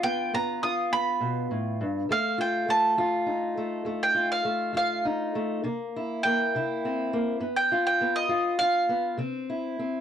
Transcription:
Already playing: steel-string acoustic guitar D3 F4
0.03 steel-string acoustic guitar B3, mandolin G5
0.34 steel-string acoustic guitar G2 B3, mandolin A#5
0.63 steel-string acoustic guitar F4, mandolin D#6
0.93 steel-string acoustic guitar B3, mandolin B5
1.21 steel-string acoustic guitar B2
1.51 steel-string acoustic guitar A2
1.81 steel-string acoustic guitar G2
2.09 steel-string acoustic guitar F2 A3, mandolin F5
2.38 steel-string acoustic guitar F4, mandolin G5
2.68 steel-string acoustic guitar A3, mandolin A5
2.97 steel-string acoustic guitar F2 F4
3.26 steel-string acoustic guitar D#4
3.57 steel-string acoustic guitar A3
3.85 steel-string acoustic guitar F2 A3
4.03 mandolin G5
4.15 steel-string acoustic guitar F4
4.32 mandolin F5
4.45 steel-string acoustic guitar A3
4.73 steel-string acoustic guitar F2 F4
4.77 mandolin F5
5.05 steel-string acoustic guitar D#4
5.35 steel-string acoustic guitar A3
5.63 steel-string acoustic guitar C3 A#3
5.96 steel-string acoustic guitar E4
6.23 steel-string acoustic guitar A#3, mandolin G5
6.55 steel-string acoustic guitar C3 E4
6.85 steel-string acoustic guitar C4
7.13 steel-string acoustic guitar A#3
7.40 steel-string acoustic guitar G2 B3
7.57 mandolin G5
7.72 steel-string acoustic guitar F4
7.87 mandolin G5
8.01 steel-string acoustic guitar B3
8.16 mandolin D#5
8.29 steel-string acoustic guitar G2 F4
8.59 steel-string acoustic guitar F4, mandolin F5
8.89 steel-string acoustic guitar B3
9.17 steel-string acoustic guitar C3 C4
9.50 steel-string acoustic guitar E4
9.79 steel-string acoustic guitar C4

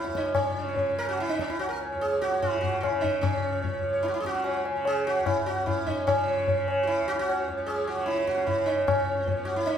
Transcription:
Already playing: tanpura C#2 C#3, sitar E4
0.05 tanpura F#2, sitar C#5, tabla te
0.15 sitar D#4, tabla ke
0.25 sitar C#5, tabla te
0.35 sitar C#4, tabla na, tabla ge
0.47 sitar C#5
0.52 tanpura C#3
0.57 sitar C#5
0.68 sitar C#5
0.76 sitar C#5, tabla tin, tabla ge
0.89 sitar C#5
0.99 tanpura C#3, sitar A#4
1.09 sitar F#4
1.19 sitar E4, tabla te
1.29 sitar D#4, tabla te
1.39 sitar C#4, tabla ke
1.46 tanpura C#2
1.50 sitar E4, tabla te
1.59 sitar F#4, tabla na
1.69 sitar A#4
1.81 sitar C#5, tabla na
1.92 tanpura F#2, sitar C#5
2.01 sitar G#4, tabla te
2.12 sitar C#5, tabla te
2.21 sitar F#4, tabla ke
2.32 sitar C#5, tabla te
2.39 tanpura C#3, sitar E4, tabla na, tabla ge
2.61 sitar F#4, tabla ge
2.73 sitar C#5
2.81 sitar E4, tabla na, tabla ge
2.87 tanpura C#3
2.93 sitar C#5
3.01 sitar D#4, tabla ge
3.21 sitar C#4, tabla na, tabla ge
3.33 tanpura C#2, sitar C#5
3.43 sitar C#5
3.53 sitar C#5
3.62 sitar C#5, tabla tin, tabla ge
3.73 sitar C#5
3.79 tanpura F#2
3.83 sitar C#5
3.93 sitar C#5
4.03 sitar E4, tabla te
4.08 sitar F#4
4.14 sitar E4, tabla te
4.20 tanpura C#3, sitar G#4
4.25 sitar F#4, tabla ke
4.35 tabla te
4.44 sitar C#5, tabla na
4.56 sitar C#5
4.65 sitar C#5, tabla na
4.71 tanpura C#3
4.76 sitar C#5
4.85 sitar G#4, tabla na
4.95 sitar C#5
5.07 sitar F#4
5.16 tanpura C#2, sitar C#5
5.26 sitar E4, tabla na, tabla ge
5.36 sitar C#5
5.46 sitar F#4, tabla te
5.64 tanpura F#2, sitar E4, tabla na, tabla ge
5.76 sitar C#5
5.87 sitar D#4, tabla ge
5.97 sitar C#5
6.07 tanpura C#3, sitar C#4, tabla na, tabla ge
6.17 sitar C#5
6.27 sitar C#5
6.38 sitar C#5
6.48 sitar C#5, tabla tin, tabla ge
6.56 tanpura C#3, sitar C#5
6.68 sitar C#5, tabla na
6.83 sitar F#4
6.87 sitar E4, tabla na
6.98 tanpura C#2, sitar C#5
7.08 sitar F#4, tabla na
7.14 sitar E4
7.19 sitar F#4
7.29 sitar C#5, tabla na
7.39 sitar C#5
7.46 tanpura F#2, sitar C#5, tabla na
7.57 sitar C#5
7.66 sitar G#4, tabla na
7.78 sitar C#5
7.87 sitar F#4
7.92 tanpura C#3
7.98 sitar C#5
8.06 sitar E4, tabla te
8.17 sitar C#5, tabla te
8.27 sitar F#4, tabla ke
8.38 tanpura C#3, sitar C#5, tabla te
8.47 sitar E4, tabla na, tabla ge
8.59 sitar C#5
8.66 sitar D#4, tabla te
8.78 sitar C#5
8.83 tanpura C#2
8.87 sitar C#4, tabla na, tabla ge
8.99 sitar C#5
9.09 sitar C#5
9.17 sitar C#5
9.27 tanpura F#2, sitar B3 C#5, tabla tin, tabla ge
9.37 sitar C#5
9.45 sitar F#4
9.56 sitar E4
9.66 sitar D#4, tabla te
9.73 tanpura C#3

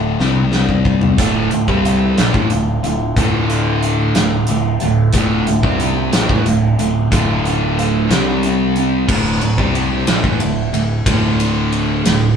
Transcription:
Already playing: picked electric bass D1, distorted electric guitar D2 A2 D3, clean electric guitar A2 D3 A3 F4
0.19 picked electric bass C2, distorted electric guitar C3 G3 C4, clean electric guitar C3 G3 C4, snare
0.36 high tom
0.52 clean electric guitar C3 G3 C4, snare
0.69 kick
0.85 clean electric guitar C3 G3 C4, kick
1.01 floor tom
1.18 picked electric bass D1, distorted electric guitar D2 A2 D3, clean electric guitar A2 D3 A3 F4, kick, closed hi-hat
1.51 picked electric bass D1, distorted electric guitar D2 A2, clean electric guitar A2 D3 A3 F4, closed hi-hat
1.68 picked electric bass C2, distorted electric guitar C3 G3 C4, kick
1.84 clean electric guitar A2 D3 A3 F4, closed hi-hat
2.17 picked electric bass A#1, clean electric guitar A2 D3 A3 F4, distorted electric guitar A#2 F3, snare, closed hi-hat
2.33 picked electric bass A1, distorted electric guitar A2 E3, kick
2.50 picked electric bass D1, distorted electric guitar D2 A2, clean electric guitar A2 D3 A3 F4, closed hi-hat
2.83 picked electric bass D1, distorted electric guitar D2 A2, clean electric guitar A2 D3 A3 F4, closed hi-hat
3.16 picked electric bass D1, distorted electric guitar D2 A2 D3, clean electric guitar A2 D3 A3 F4, kick, closed hi-hat
3.50 clean electric guitar A2 D3 A3 F4, closed hi-hat
3.82 clean electric guitar A2 D3 A3 F4, closed hi-hat
4.15 picked electric bass D1, distorted electric guitar D2 A2, clean electric guitar A2 D3 A3 F4, snare, closed hi-hat
4.47 picked electric bass D1, distorted electric guitar D2 A2, clean electric guitar A2 D3 A3 F4, closed hi-hat
4.80 picked electric bass D1, distorted electric guitar D2 A2, clean electric guitar A2 D3 A3 F4, closed hi-hat
5.13 picked electric bass D1, distorted electric guitar D2 A2 D3, clean electric guitar A2 D3 A3 F4, kick, closed hi-hat
5.47 picked electric bass D1, distorted electric guitar D2 A2, clean electric guitar A2 D3 A3 F4, closed hi-hat
5.63 picked electric bass C2, distorted electric guitar C3 G3 C4, kick
5.80 clean electric guitar A2 D3 A3 F4, closed hi-hat
6.13 picked electric bass A#1, clean electric guitar A2 D3 A3 F4, distorted electric guitar A#2 F3, snare, closed hi-hat
6.29 picked electric bass A1, distorted electric guitar A2 E3, kick
6.46 picked electric bass D1, distorted electric guitar D2 A2, clean electric guitar A2 D3 A3 F4, closed hi-hat
6.79 picked electric bass D1, distorted electric guitar D2 A2, clean electric guitar A2 D3 A3 F4, closed hi-hat
7.11 picked electric bass D1, distorted electric guitar D2 A2 D3, clean electric guitar A2 D3 A3 F4, kick, closed hi-hat
7.45 clean electric guitar A2 D3 A3 F4, closed hi-hat
7.78 clean electric guitar A2 D3 A3 F4, closed hi-hat
8.09 picked electric bass C2, distorted electric guitar C3 G3 C4, clean electric guitar C3 G3 C4, snare, closed hi-hat
8.43 clean electric guitar C3 G3 C4, closed hi-hat
8.76 clean electric guitar C3 G3 C4, closed hi-hat
9.07 picked electric bass D1, distorted electric guitar D2 A2 D3, clean electric guitar D2, kick, crash
9.41 picked electric bass D1, distorted electric guitar D2 A2, clean electric guitar D3, ride
9.58 picked electric bass C2, distorted electric guitar C3 G3 C4, kick
9.75 clean electric guitar A2, ride
10.07 picked electric bass A#1, distorted electric guitar A#2 F3, clean electric guitar D3, snare, ride
10.23 picked electric bass A1, distorted electric guitar A2 E3, kick
10.40 picked electric bass D1, distorted electric guitar D2 A2, clean electric guitar A3, ride
10.73 picked electric bass D1, distorted electric guitar D2 A2, clean electric guitar A2, ride
11.06 picked electric bass D1, distorted electric guitar D2 A2 D3, clean electric guitar D2, kick, ride
11.40 clean electric guitar D3, ride
11.72 clean electric guitar A2, ride
12.05 picked electric bass D1, distorted electric guitar D2 A2, clean electric guitar D3, snare, ride

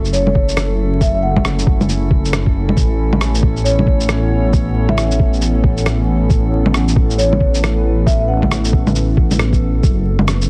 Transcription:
Already playing: detuned saw bass F#1, synth texture A3 A4, analog synth pad C#4 E4 A4
0.05 shaker
0.13 marimba C#5, shaker
0.26 marimba C#5, low bongo
0.35 kick
0.49 shaker
0.57 cross-stick, shaker
1.01 marimba E5, kick, shaker
1.15 marimba E5
1.23 marimba F#5
1.36 kick, low bongo
1.45 cross-stick, shaker
1.59 shaker
1.67 kick
1.81 low bongo, shaker
1.89 shaker
2.11 kick
2.25 shaker
2.33 cross-stick, shaker
2.46 kick
2.69 low bongo
2.76 detuned saw bass A1, analog synth pad B3 A4 C#5, kick, shaker
3.13 low bongo
3.21 cross-stick, shaker
3.35 shaker
3.43 kick
3.57 shaker
3.64 marimba C#5, shaker
3.79 low bongo
3.87 kick
4.00 shaker
4.09 cross-stick, shaker
4.53 kick, shaker
4.89 marimba E5, low bongo
4.97 marimba E5, cross-stick, shaker
5.11 shaker
5.20 kick
5.33 shaker
5.42 shaker
5.64 kick
5.77 shaker
5.86 cross-stick, shaker
6.30 analog synth pad B4, kick, shaker
6.66 low bongo
6.74 cross-stick, shaker
6.88 shaker
6.96 kick
7.10 shaker
7.18 marimba C#5, shaker
7.32 marimba C#5, low bongo
7.40 kick
7.55 shaker
7.64 cross-stick, shaker
8.06 marimba E5, kick, shaker
8.19 marimba E5
8.28 marimba F#5
8.42 kick, low bongo
8.51 cross-stick, shaker
8.65 shaker
8.73 kick
8.87 low bongo, shaker
8.95 shaker
9.17 kick
9.31 low bongo, shaker
9.39 cross-stick, shaker
9.53 kick, shaker
9.83 detuned saw bass F#1, analog synth pad C#4 F#4 A4, kick, shaker
10.19 low bongo
10.28 cross-stick, shaker
10.42 shaker

